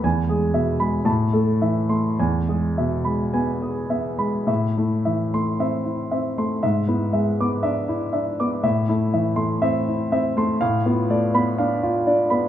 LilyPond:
<<
  \new Staff \with { instrumentName = "Grand piano" } { \time 4/4 \key a \minor \tempo 4 = 58 gis''16 gis'16 e''16 b''16 a''16 a'16 e''16 c'''16 gis''16 gis'16 e''16 b''16 gis''16 gis'16 e''16 b''16 | e''16 e'16 e''16 c'''16 e''16 e'16 e''16 c'''16 e''16 e'16 e''16 d'''16 e''16 e'16 e''16 d'''16 | e''16 e'16 e''16 c'''16 e''16 e'16 e''16 c'''16 f''16 f'16 d''16 b''16 f''16 f'16 d''16 b''16 | }
  \new Staff \with { instrumentName = "Grand piano" } { \time 4/4 \key a \minor e,16 gis16 b,16 gis16 a,16 a16 e16 a16 e,16 gis16 b,16 gis16 b8 b16 gis16 | a,16 a16 e16 a16 c'8 c'16 a16 gis,16 b16 gis16 b16 d'8 d'16 b16 | a,16 a16 e16 a16 c'8 c'16 a16 a,16 b16 a16 b16 d'8 d'16 b16 | }
>>